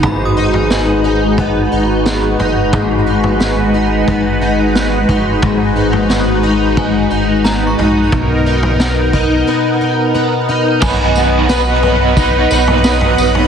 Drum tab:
CC |----------------|----------------|----------------|----------------|
TB |----------------|----------------|----------------|----------------|
SD |----o-------o---|----o-------o---|----o-------o---|----o-----------|
FT |o--o----o-----o-|o--o----o-----o-|o--o----o-----o-|o--o------------|
BD |o-------o-------|o-------o-----o-|o-------o-------|o-----o---------|

CC |x---------------|
TB |x-x-x---x-x-x-x-|
SD |----o-------o---|
FT |o-----o----o-o-o|
BD |o-------o-------|